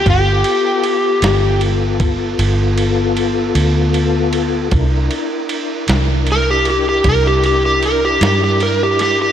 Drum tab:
RD |xxxxxxxxxxxx|xxxxxxxxxxxx|
SD |---o--------|---o-----o-o|
BD |o----o------|o-----o-----|